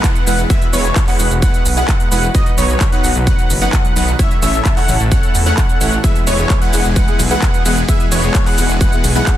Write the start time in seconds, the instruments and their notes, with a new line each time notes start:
Already playing: analog synth pad E3 G#3 B3 G#4 B4, supersaw synth G#3 B3 E4 B4 F#5, analog synth lead F#5, downlifter
0.04 kick, clap, closed hi-hat, cabasa
0.15 closed hi-hat, cabasa
0.27 detuned saw bass E1, supersaw synth G#3 B3 E4 B4 F#5, analog synth lead F#5, open hi-hat, cabasa
0.39 closed hi-hat, cabasa
0.50 supersaw synth G#3 B3 E4 B4 E5, analog synth pad F#4, analog synth lead E5, kick, closed hi-hat, cabasa
0.62 closed hi-hat, cabasa
0.73 detuned saw bass E1, supersaw synth G#3 B3 E4 B4 C#5, analog synth lead C#5, open hi-hat, cabasa
0.85 closed hi-hat, cabasa
0.96 kick, clap, closed hi-hat, cabasa
1.08 supersaw synth G#3 B3 E4 B4 F#5, analog synth lead F#5, clap, open hi-hat, cabasa
1.19 detuned saw bass E1, open hi-hat, cabasa
1.31 detuned saw bass E1, closed hi-hat, cabasa
1.42 supersaw synth G#3 B3 E4 B4 F#5, analog synth lead F#5, kick, closed hi-hat, cabasa
1.54 closed hi-hat, cabasa
1.65 detuned saw bass B1, open hi-hat, cabasa
1.77 supersaw synth G#3 B3 E4 B4 F#5, analog synth lead F#5, cabasa
1.88 kick, clap, closed hi-hat, cabasa
2.00 closed hi-hat, cabasa
2.12 detuned saw bass E1, supersaw synth G#3 B3 E4 B4 F#5, analog synth lead F#5, open hi-hat, cabasa
2.23 cabasa
2.35 analog synth pad D#3 F#3, supersaw synth F#3 B3 D#4 B4 D#5, analog synth lead D#5, kick, closed hi-hat, cabasa
2.46 closed hi-hat, cabasa
2.58 detuned saw bass B1, supersaw synth F#3 B3 D#4 B4 C#5, analog synth lead C#5, open hi-hat, cabasa
2.69 closed hi-hat, cabasa
2.81 kick, clap, closed hi-hat, cabasa
2.92 supersaw synth F#3 B3 D#4 B4 F#5, analog synth lead F#5, closed hi-hat, cabasa
3.04 detuned saw bass B1, open hi-hat, cabasa
3.15 detuned saw bass B1, closed hi-hat, cabasa
3.27 supersaw synth F#3 B3 D#4 B4 F#5, analog synth lead F#5, kick, closed hi-hat, cabasa
3.39 closed hi-hat, cabasa
3.50 detuned saw bass F#1, open hi-hat, cabasa
3.62 supersaw synth F#3 B3 D#4 B4 F#5, analog synth lead F#5, closed hi-hat, cabasa
3.73 kick, clap, closed hi-hat, cabasa
3.85 closed hi-hat, cabasa
3.96 detuned saw bass B1, supersaw synth F#3 B3 D#4 B4 F#5, analog synth lead F#5, open hi-hat, cabasa
4.08 closed hi-hat, cabasa
4.19 analog synth pad C#3 E3 A3 E4 A4, supersaw synth A3 C#4 E4 C#5 E5, analog synth lead E5, kick, closed hi-hat, cabasa
4.31 closed hi-hat, cabasa
4.42 detuned saw bass A1, supersaw synth A3 C#4 E4 C#5 E5, analog synth lead E5, open hi-hat, cabasa
4.54 closed hi-hat, cabasa
4.65 kick, clap, closed hi-hat, cabasa
4.77 supersaw synth A3 C#4 E4 C#5 F#5, analog synth lead F#5, clap, open hi-hat, cabasa
4.88 detuned saw bass A1, open hi-hat, cabasa
5.00 detuned saw bass A1, closed hi-hat, cabasa
5.12 supersaw synth A3 C#4 E4 C#5 F#5, analog synth lead F#5, kick, closed hi-hat, cabasa
5.23 closed hi-hat, cabasa
5.35 detuned saw bass E2, open hi-hat, cabasa
5.46 supersaw synth A3 C#4 E4 C#5 F#5, analog synth lead F#5, cabasa
5.58 kick, clap, closed hi-hat, cabasa
5.69 closed hi-hat, cabasa
5.81 detuned saw bass A1, supersaw synth A3 C#4 E4 C#5 F#5, analog synth lead F#5, open hi-hat, cabasa
5.92 closed hi-hat, cabasa
6.03 analog synth pad B2 G#3 E4 G#4, felt piano E3 G#3 B3 G#4, supersaw synth G#3 B3 E4 B4 E5, analog synth lead E5, kick, closed hi-hat, cabasa
6.16 closed hi-hat, cabasa
6.27 detuned saw bass E1, supersaw synth G#3 B3 E4 B4 C#5, analog synth lead C#5, open hi-hat, ride, cabasa
6.38 felt piano E3 G#3 B3 G#4, closed hi-hat, cabasa
6.50 kick, clap, closed hi-hat, cabasa
6.62 supersaw synth G#3 B3 E4 B4 F#5, analog synth lead F#5, closed hi-hat, cabasa
6.73 detuned saw bass E1, felt piano E3 G#3 B3 G#4, open hi-hat, ride, cabasa
6.85 detuned saw bass E1, closed hi-hat, cabasa
6.96 supersaw synth G#3 B3 E4 B4 F#5, analog synth lead F#5, kick, closed hi-hat, cabasa
7.07 felt piano E3 G#3 B3 G#4, closed hi-hat, cabasa
7.19 detuned saw bass B1, open hi-hat, ride, cabasa
7.30 felt piano E3 G#3 B3 G#4, supersaw synth G#3 B3 E4 B4 F#5, analog synth lead F#5, closed hi-hat, cabasa
7.42 kick, clap, closed hi-hat, cabasa
7.54 closed hi-hat, cabasa
7.65 detuned saw bass E1, felt piano E3 G#3 B3 G#4, supersaw synth G#3 B3 E4 B4 F#5, analog synth lead F#5, open hi-hat, ride, cabasa
7.77 closed hi-hat, cabasa
7.88 felt piano E3 G#3 B3 G#4, supersaw synth G#3 B3 E4 B4 E5, analog synth pad F#4, analog synth lead E5, kick, closed hi-hat, cabasa
8.00 closed hi-hat, cabasa
8.12 detuned saw bass E1, supersaw synth G#3 B3 E4 B4 C#5, analog synth lead C#5, open hi-hat, ride, cabasa
8.23 felt piano E3 G#3 B3 G#4, closed hi-hat, cabasa
8.35 kick, clap, closed hi-hat, cabasa
8.46 supersaw synth G#3 B3 E4 B4 F#5, analog synth lead F#5, clap, open hi-hat, cabasa
8.57 detuned saw bass E1, felt piano E3 G#3 B3 G#4, open hi-hat, ride, cabasa
8.69 detuned saw bass E1, closed hi-hat, cabasa
8.81 supersaw synth G#3 B3 E4 B4 F#5, analog synth lead F#5, kick, closed hi-hat, cabasa
8.92 felt piano E3 G#3 B3 G#4, closed hi-hat, cabasa
9.04 detuned saw bass B1, open hi-hat, ride, cabasa
9.15 felt piano E3 G#3 B3 G#4, supersaw synth G#3 B3 E4 B4 F#5, analog synth lead F#5, cabasa
9.27 kick, clap, closed hi-hat, cabasa